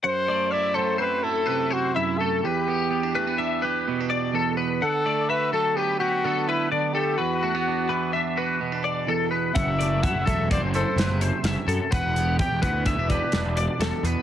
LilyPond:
<<
  \new Staff \with { instrumentName = "Clean electric guitar" } { \time 5/4 \key e \minor \tempo 4 = 126 fis''8 d''8 e''8 a'8 c''8 a'8 b'8 c''8 e''8 a'8 | b'8 g'4 b'8 e''8 b'4 d''8 a'8 b'8 | fis''8 d''8 e''8 a'8 b'8 g'8 a'8 b'8 d''8 a'8 | b'8 fis'4 b'8 e''8 b'4 d''8 a'8 b'8 |
fis''8 d''8 e''8 a'8 c''8 a'8 b'8 c''8 e''8 a'8 | b'8 g'4 b'8 e''8 b'4 d''8 a'8 b'8 | }
  \new Staff \with { instrumentName = "Trumpet" } { \time 5/4 \key e \minor c''4 d''8 c''8 b'8 a'4 fis'8 e'8 a'8 | g'2 r2. | a'4 b'8 a'8 g'8 fis'4 e'8 d'8 g'8 | fis'2 r2. |
e''4 fis''8 e''8 d''8 c''4 r4. | fis''4 g''8 fis''8 e''8 d''4 r4. | }
  \new Staff \with { instrumentName = "Clean electric guitar" } { \time 5/4 \key e \minor << { r8 a8 e'8 a8 c'8 e'8 c'4. a8 | r8 b8 b16 d'16 a16 b16 d'8 g'8 b16 d'4~ d'16 b8 | r8 a8 fis'8 a8 b8 b8 b4. a8 | r8 a16 b16 d'8 b8 d'8 fis'8 b16 d'4~ d'16 b8 |
r8 a8 e'8 a8 c'8 e'8 c'2 | r8 b8 g'8 b8 b16 d'16 g'8 d'4. b8 | } \\ { fis,4. fis4. c4 fis,4 | e,4. e4. b,4 e,4 | d4. fis4. d4 d4 | e,4. e4. b,4 e,4 |
fis,4. fis4. c4 g,8 fis,8 | e,4. e4. b,4 e,4 | } >> }
  \new Staff \with { instrumentName = "Picked electric bass" } { \clef bass \time 5/4 \key e \minor r1 r4 | r1 r4 | r1 r4 | r1 r4 |
fis,,4 fis,16 fis,,16 e,,8. fis,,8 r16 fis,,16 fis,,8 r16 fis,,16 r16 fis,16 r16 | e,,4 e,16 e,,16 d,8. e,,8 r16 e,,16 e,,8 r16 e,,16 r16 e,16 r16 | }
  \new DrumStaff \with { instrumentName = "Drums" } \drummode { \time 5/4 r4 r4 r4 r4 r4 | r4 r4 r4 r4 r4 | r4 r4 r4 r4 r4 | r4 r4 r4 r4 r4 |
<hh bd>8 hh8 <hh bd>8 <hh bd>8 <hh bd>8 hh8 <hh sn>8 hh8 <hh sn>8 hh8 | <hh bd>8 hh8 <hh bd>8 <hh bd>8 <hh bd sn>8 <hh bd>8 <hh sn>8 hh8 <hh sn>8 hh8 | }
>>